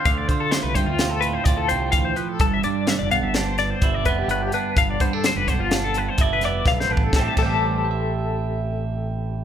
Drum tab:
CC |------------------------------|------------------------------|------------------------------|---x--------------------------|
HH |x--x--x--x--x--x--x--x--x--x--|x--x--x--x--x--x--x--x--x--x--|x--x--x--x--x--x--x--x--------|------------------------------|
SD |------o-----o-----------------|------o-----o--o--------------|------o-----o--------o--o-o---|o-----------------------------|
BD |o--o-----o--------o-----o-----|o-----------------o--o--------|o--o-----o--------o-----o---o-|o--o--------------------------|